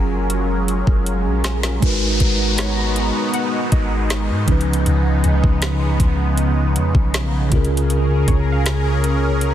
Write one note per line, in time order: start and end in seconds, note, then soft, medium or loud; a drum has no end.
0.00 0.84 F#1 loud
0.00 1.77 F#3 medium
0.00 1.79 F#3 medium
0.00 1.78 C#4 medium
0.00 1.78 F4 medium
0.00 1.79 F4 medium
0.00 1.78 G#4 medium
0.00 1.79 G#4 medium
0.00 1.78 A#4 medium
0.00 1.80 A#4 medium
0.00 swell medium
0.30 closed hi-hat medium
0.68 closed hi-hat medium
0.87 1.27 F#1 loud
0.87 kick medium
1.06 closed hi-hat medium
1.26 1.80 A#1 loud
1.44 snare medium
1.44 closed hi-hat medium
1.63 snare medium
1.80 2.19 G#1 loud
1.80 4.43 G#3 medium
1.80 7.48 G#3 medium
1.80 4.45 B3 medium
1.80 4.44 D#4 medium
1.80 7.48 D#4 medium
1.80 4.45 F#4 medium
1.80 4.45 A#5 medium
1.80 kick loud
1.80 closed hi-hat medium
1.80 downlifter medium
1.85 4.45 A#4 medium
1.85 4.46 B4 medium
2.20 3.12 G#1 loud
2.20 kick medium
2.20 closed hi-hat medium
2.58 4.82 C#5 medium
2.58 snare loud
2.58 closed hi-hat medium
2.96 closed hi-hat medium
3.34 4.82 F#5 medium
3.34 closed hi-hat medium
3.72 4.31 G#1 loud
3.72 4.82 D#5 medium
3.72 kick medium
3.72 closed hi-hat medium
4.10 snare loud
4.10 closed hi-hat medium
4.30 4.47 G#2 loud
4.46 4.85 C#2 loud
4.46 7.47 C#3 medium
4.46 9.54 C#3 medium
4.46 7.49 B3 medium
4.46 7.48 C#4 medium
4.46 7.48 D#4 medium
4.46 kick loud
4.46 closed hi-hat soft
4.46 open hi-hat medium
4.50 7.49 F3 medium
4.50 7.50 B4 medium
4.61 closed hi-hat soft
4.73 closed hi-hat medium
4.86 5.23 C#2 loud
4.86 closed hi-hat medium
5.24 5.43 C#2 loud
5.24 closed hi-hat medium
5.44 5.98 C#2 loud
5.44 kick loud
5.62 snare loud
5.62 closed hi-hat medium
6.00 6.78 C#2 loud
6.00 kick loud
6.00 closed hi-hat medium
6.38 closed hi-hat medium
6.76 6.94 F2 loud
6.76 closed hi-hat medium
6.95 7.50 B1 medium
6.95 kick loud
7.14 snare loud
7.14 closed hi-hat medium
7.50 8.25 C#2 loud
7.50 9.54 C#3 medium
7.50 7.58 C4 medium
7.50 9.54 C#4 medium
7.50 9.54 F4 medium
7.50 9.54 G#4 medium
7.50 9.54 A#4 medium
7.50 kick loud
7.50 closed hi-hat soft
7.50 open hi-hat medium
7.54 9.54 C#4 medium
7.54 9.54 G#4 medium
7.54 9.54 A#4 medium
7.65 closed hi-hat soft
7.77 closed hi-hat medium
7.90 closed hi-hat medium
8.28 9.54 C#2 loud
8.28 9.54 C#5 medium
8.28 kick medium
8.28 closed hi-hat medium
8.52 9.54 F5 medium
8.66 snare loud
8.66 closed hi-hat medium
9.04 closed hi-hat medium
9.41 closed hi-hat medium